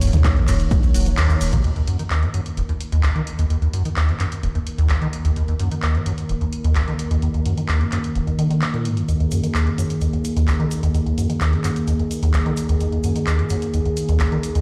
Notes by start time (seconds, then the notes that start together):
Already playing: D#3 A#3 C#5
0.01 D#1 F#2, closed hi-hat, open hi-hat, ride, shaker
0.13 D#2 D#3, snare, closed hi-hat, mid tom, shaker
0.24 D#2, kick, snare, clap, closed hi-hat, shaker
0.37 F#2, closed hi-hat
0.48 D#1 F#2, clap, open hi-hat, ride, shaker
0.60 closed hi-hat, shaker
0.71 D#1, kick, closed hi-hat, shaker
0.83 D#2, closed hi-hat, shaker
0.94 D#1 F#3, closed hi-hat, open hi-hat, ride, shaker
1.06 D#3, closed hi-hat, shaker
1.17 D#2, snare, clap, closed hi-hat, shaker
1.30 D#2, closed hi-hat, shaker
1.41 D#1, open hi-hat, ride, shaker
1.52 A#1 A#2, closed hi-hat, mid tom, shaker
1.64 D#2 D#3 A#3 A#4, closed hi-hat
1.76 D#2, closed hi-hat
1.87 F#2, closed hi-hat
1.99 D#3, closed hi-hat
2.10 D#2, clap, closed hi-hat
2.23 F#2, closed hi-hat
2.34 F#2, closed hi-hat
2.46 closed hi-hat
2.57 D#1, closed hi-hat
2.69 D#2, closed hi-hat
2.81 closed hi-hat
2.92 D#2, closed hi-hat
3.03 C#2, clap, closed hi-hat
3.16 D#3, closed hi-hat
3.27 closed hi-hat
3.39 D#2, closed hi-hat
3.50 D#2, closed hi-hat
3.62 D#2, closed hi-hat
3.73 F#2, closed hi-hat
3.85 D#3, closed hi-hat
3.96 D#2, clap, closed hi-hat
4.09 F#2, closed hi-hat
4.20 F#2, clap, closed hi-hat
4.32 closed hi-hat
4.43 D#1, closed hi-hat
4.55 D#2, closed hi-hat
4.67 closed hi-hat
4.78 D#2, closed hi-hat
4.89 C#2, clap, closed hi-hat
5.02 D#3, closed hi-hat
5.13 closed hi-hat
5.25 D#2, closed hi-hat
5.36 D#2, closed hi-hat
5.48 D#2, closed hi-hat
5.59 F#2, closed hi-hat
5.71 D#3, closed hi-hat
5.82 D#2, clap, closed hi-hat
5.95 F#2, closed hi-hat
6.06 F#2, closed hi-hat
6.18 closed hi-hat
6.29 D#1, closed hi-hat
6.41 D#2, closed hi-hat
6.53 closed hi-hat
6.64 D#2, closed hi-hat
6.75 C#2, clap, closed hi-hat
6.88 D#3, closed hi-hat
6.99 closed hi-hat
7.11 D#2, closed hi-hat
7.22 D#2, closed hi-hat
7.34 D#2, closed hi-hat
7.46 F#2, closed hi-hat
7.57 D#3, closed hi-hat
7.69 D#2, clap, closed hi-hat
7.81 F#2, closed hi-hat
7.92 F#2, clap, closed hi-hat
8.04 closed hi-hat
8.15 D#1, closed hi-hat
8.27 D#2, closed hi-hat
8.39 D#3, closed hi-hat
8.50 D#3, closed hi-hat
8.62 A#2, clap, closed hi-hat
8.74 A#2, closed hi-hat
8.85 G#2, closed hi-hat
8.97 F#2, closed hi-hat
9.08 D#2 G#4, closed hi-hat, shaker
9.20 D#2, closed hi-hat
9.31 F#2, closed hi-hat, shaker
9.43 D#3, closed hi-hat, shaker
9.55 D#2, clap, closed hi-hat, shaker
9.67 F#2, closed hi-hat
9.78 F#2, closed hi-hat, shaker
9.90 closed hi-hat, shaker
10.01 D#2, closed hi-hat, shaker
10.13 D#2, closed hi-hat
10.25 closed hi-hat, shaker
10.36 D#2, closed hi-hat, shaker
10.48 C#2, clap, closed hi-hat, shaker
10.60 D#3, closed hi-hat
10.71 closed hi-hat, shaker
10.83 D#2, closed hi-hat, shaker
10.94 D#2, closed hi-hat, shaker
11.06 D#2, closed hi-hat
11.18 F#2, closed hi-hat, shaker
11.30 D#3, closed hi-hat, shaker
11.41 D#2, clap, closed hi-hat, shaker
11.53 F#2, closed hi-hat
11.64 F#2, clap, closed hi-hat, shaker
11.76 closed hi-hat, shaker
11.87 D#2, closed hi-hat, shaker
11.99 D#2, closed hi-hat
12.11 closed hi-hat, shaker
12.23 D#2, closed hi-hat, shaker
12.34 C#2, clap, closed hi-hat, shaker
12.46 D#3, closed hi-hat
12.57 closed hi-hat, shaker
12.69 D#2, closed hi-hat, shaker
12.80 D#2, closed hi-hat, shaker
12.92 D#2, closed hi-hat
13.04 F#2, closed hi-hat, shaker
13.16 D#3, closed hi-hat, shaker
13.27 D#2, clap, closed hi-hat, shaker
13.39 F#2, closed hi-hat
13.49 F#2, closed hi-hat, shaker
13.62 closed hi-hat, shaker
13.74 D#2, closed hi-hat, shaker
13.85 D#2, closed hi-hat
13.97 closed hi-hat, shaker
14.09 D#2, closed hi-hat, shaker
14.20 C#2, clap, closed hi-hat, shaker
14.32 D#3, closed hi-hat
14.43 closed hi-hat, shaker
14.55 D#2, closed hi-hat, shaker